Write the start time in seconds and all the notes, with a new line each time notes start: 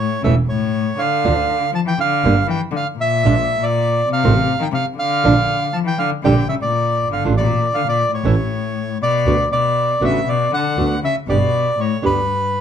Already playing: A2
0.00 C#5
0.22 E1 C#3 E3 A3 C#4 E4 E5
0.47 A2 C#5
0.98 D3 F5
1.24 D2 D3 A3 D4 F4
1.72 F3 A5
1.86 E3 G5
1.97 D3 F5
2.24 G1 D3 G3 A#3 D4 G4
2.47 E3 G5
2.71 D3
2.76 F5
2.96 A#2
3.01 E5
3.25 A#1 F3 G#3 D4 F4
3.60 A#2 D5
4.08 C3
4.13 F5
4.23 A1 D#3 A3 C4 F4
4.59 D#3 G5
4.72 C3 F5
4.96 D3 F5
5.24 A#1 F3 A#3 D4 F4
5.73 F3 A5
5.84 E3 G5
5.99 D3 F5
6.23 A#1 D3 G3 D4 G4 G5
6.49 C#3 E5
6.62 A#2 D5
7.00 G1
7.11 D3 F5
7.24 A1 D3 A3 D4 F4
7.37 A#2 D5
7.74 D3 F5
7.87 A#2 D5
8.12 A2 C#5
8.24 A1 E3 A3 C#4 E4
9.01 B2 D5
9.26 D2 D3 A3 B3 F#4
9.51 B2 D5
10.01 A1 C#3 D3 A3 B3 F#4
10.05 E5
10.28 B2 D5
10.51 D3 F#5
10.77 D2 D3 A3 B3 F#4
11.03 C#3 E5
11.28 G1 B2 D3 G3 B3 G4 D5
11.79 A2 C#5
12.02 D2 G2 D3 G3 B3 G4 B4